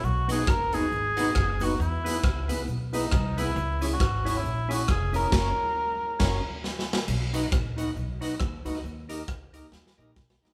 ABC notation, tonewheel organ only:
X:1
M:4/4
L:1/8
Q:"Swing" 1/4=136
K:B
V:1 name="Tonewheel organ"
z [B,DFB] z [B,DFB] z [B,DFB] [FB] [B,DFB] | z [B,EGB] z [B,EGB] z [B,EGB] [GB] [B,EGB] | z [CEGc] z [CEGc] z [CEGc] [Gc] [CEGc] | [CFAc] z3 [CFAc] z3 |
z [DFBd] z [DFBd] z [DFBd] z [DFBd] | z [D=GAd] z [DGAd] z [DGAd] z [DGAd] |]